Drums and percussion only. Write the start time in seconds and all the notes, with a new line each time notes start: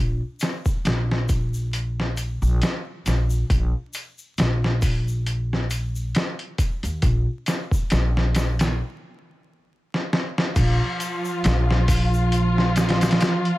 0.40 snare, closed hi-hat, shaker
0.65 kick, shaker
0.85 snare, closed hi-hat, shaker
1.11 snare
1.29 kick, closed hi-hat, shaker
1.54 shaker
1.73 closed hi-hat, shaker
2.00 snare
2.17 closed hi-hat, shaker
2.42 shaker
2.62 snare, closed hi-hat, shaker
3.06 snare, closed hi-hat, shaker
3.30 shaker
3.50 kick, closed hi-hat, shaker
3.94 closed hi-hat, shaker
4.18 shaker
4.38 snare, closed hi-hat, shaker
4.64 snare
4.82 kick, open hi-hat, shaker
5.08 shaker
5.27 closed hi-hat, shaker
5.53 snare
5.71 closed hi-hat, shaker
5.96 shaker
6.15 snare, closed hi-hat, shaker
6.39 closed hi-hat
6.58 kick, closed hi-hat, shaker
6.83 closed hi-hat, shaker
7.02 kick, closed hi-hat, shaker
7.46 snare, closed hi-hat, shaker
7.71 kick, shaker
7.90 snare, closed hi-hat, shaker
8.17 snare
8.35 snare, closed hi-hat, shaker
8.59 snare, closed hi-hat, shaker
9.94 snare
10.13 snare
10.38 snare
10.56 kick, closed hi-hat, crash, shaker
11.00 closed hi-hat, shaker
11.25 shaker
11.44 snare, closed hi-hat, shaker
11.71 snare
11.88 kick, open hi-hat, shaker
12.14 shaker
12.32 closed hi-hat, shaker
12.58 snare
12.76 snare, closed hi-hat, shaker
12.89 snare, closed hi-hat
13.01 snare, closed hi-hat, shaker
13.11 snare, closed hi-hat
13.21 snare, closed hi-hat, shaker
13.45 closed hi-hat